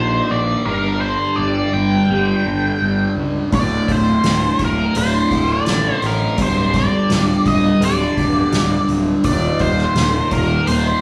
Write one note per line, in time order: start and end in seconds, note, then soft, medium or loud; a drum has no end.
0.00 0.19 A#1 medium
0.00 0.64 D#2 medium
0.00 0.65 A#2 medium
0.00 0.66 D#3 medium
0.00 0.32 C5 medium
0.30 0.55 A#1 medium
0.30 0.68 D5 medium
0.66 1.15 G1 medium
0.66 2.07 G2 medium
0.66 2.08 D3 medium
0.66 2.12 G3 medium
0.66 1.01 A#4 medium
1.01 1.39 C5 medium
1.36 1.62 G1 medium
1.36 1.74 D5 medium
1.73 1.98 G1 medium
1.73 3.12 G5 medium
2.09 2.34 G1 medium
2.09 3.50 G2 medium
2.09 3.51 D3 medium
2.09 3.54 G3 medium
2.46 2.70 G1 medium
2.82 3.06 G1 medium
3.16 3.40 C#2 medium
3.52 3.77 D1 medium
3.52 4.94 D2 medium
3.52 4.94 A2 medium
3.52 4.97 D3 medium
3.52 3.90 D5 medium
3.52 kick loud
3.52 open hi-hat medium
3.88 4.12 D1 medium
3.88 4.63 C5 medium
3.88 kick medium
3.88 open hi-hat soft
4.23 4.48 D1 medium
4.23 snare loud
4.23 open hi-hat medium
4.59 4.84 D1 medium
4.59 kick medium
4.59 open hi-hat soft
4.65 4.96 A#4 medium
4.95 5.20 D1 medium
4.95 6.36 D2 medium
4.95 6.37 A2 medium
4.95 6.37 D3 medium
4.95 5.47 C5 medium
4.95 open hi-hat medium
5.31 5.55 D1 medium
5.31 kick medium
5.31 open hi-hat soft
5.52 5.94 D5 medium
5.66 5.91 A1 medium
5.66 snare medium
5.66 open hi-hat medium
5.94 6.06 C5 medium
6.02 6.26 A1 medium
6.02 open hi-hat soft
6.06 6.41 A#4 medium
6.37 6.87 D1 medium
6.37 7.79 G2 medium
6.37 7.80 D3 medium
6.37 7.83 G3 medium
6.37 kick medium
6.37 open hi-hat medium
6.42 6.77 C5 medium
6.74 7.47 D5 medium
6.74 kick medium
6.74 open hi-hat soft
7.10 7.34 D1 medium
7.10 snare medium
7.10 open hi-hat medium
7.45 7.70 D1 medium
7.45 7.84 D#5 medium
7.45 kick medium
7.45 open hi-hat soft
7.80 8.05 D1 medium
7.80 9.22 G2 medium
7.80 9.23 D3 medium
7.80 9.26 G3 medium
7.80 open hi-hat medium
7.85 8.86 D5 medium
8.17 8.41 D1 medium
8.17 kick medium
8.17 open hi-hat soft
8.51 8.76 D1 medium
8.51 snare medium
8.51 open hi-hat medium
8.88 9.12 D1 medium
8.88 open hi-hat soft
9.24 9.49 D#1 medium
9.24 10.68 D#2 medium
9.24 10.66 A#2 medium
9.24 10.70 D#3 medium
9.24 9.62 D5 medium
9.24 kick medium
9.24 open hi-hat medium
9.59 9.84 D#1 medium
9.59 10.32 C5 medium
9.59 kick medium
9.59 open hi-hat soft
9.78 snare soft
9.95 10.20 D#1 medium
9.95 snare medium
9.95 open hi-hat medium
10.31 10.56 D#1 medium
10.31 10.67 A#4 medium
10.31 kick medium
10.31 open hi-hat soft
10.67 10.91 D#1 medium
10.67 11.01 D#2 medium
10.67 11.01 A#2 medium
10.67 11.01 D#3 medium
10.67 11.01 C5 medium
10.67 open hi-hat medium